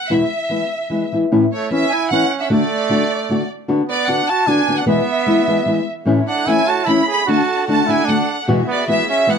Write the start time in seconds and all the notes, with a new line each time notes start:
0.10 E2 B2 E3 G#3 B3 E4 E5
0.49 E3 G#3 B3 E4
0.90 E3 G#3 B3 E4
1.12 E3 G#3 B3 E4
1.32 A2 E3 B3 C#4 E4
1.52 A3 C#5
1.70 E3 B3 C#4 E4 E5
1.91 E4 G#5
2.09 E3 B3 C#4 E4 F#5
2.39 C#4 D4 E5 F#5
2.50 D3 A3 D4 F#4 D5
2.89 D3 A3 D4 F#4
3.29 D3 A3 D4 F#4
3.68 D3 B3 D4 F#4
3.88 B3 D5
4.07 D3 B3 D4 F#4 F#5
4.28 F#4 A5
4.47 D3 B3 D4 F#4 G#5
4.68 D3 B3 D4 F#4
4.78 D4 F#5
4.86 E2 B2 E3 G#3 B3 E4 E5
5.26 E3 G#3 B3 E4
5.47 E3 G#3 B3 E4
5.66 E3 G#3 B3 E4
6.05 A2 E3 A3 C#4 E4 C#5
6.27 D4 F#5
6.46 E3 A3 C#4 E4 G#5
6.68 F#4 A5
6.85 E3 A3 C#4 E4 B5
7.07 G#4
7.11 B5
7.26 D3 A3 D4 F#4 A4 F#5 A5
7.67 D3 A3 D4 F#4 A5
7.87 D3 A3 D4 E4 F#4 G#5
8.05 D3 D4 F#5
8.09 A3 D4 F#4
8.47 E2 B2 E3 G#3 B3 F#4 G#4 E5
8.68 B3 D5
8.87 E3 G#3 B3 F#4 E5
9.09 C#4 E5
9.27 E3 G#3 B3 F#4 F#5